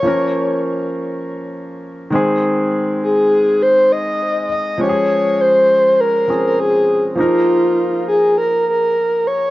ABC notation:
X:1
M:4/4
L:1/16
Q:"Swing 16ths" 1/4=101
K:Abmix
V:1 name="Soft synth lead"
d4 z12 | z4 A4 c2 e4 e2 | d4 c4 B3 B A3 z | F6 A2 B2 B4 d2 |]
V:2 name="Grand piano"
[F,B,DB]12- [F,B,DB]2 [E,A,CA]2- | [E,A,CA]12- [E,A,CA]2 z2 | [F,A,D=GA]8- [F,A,DGA]2 [F,CDA]6 | [F,B,EB]16 |]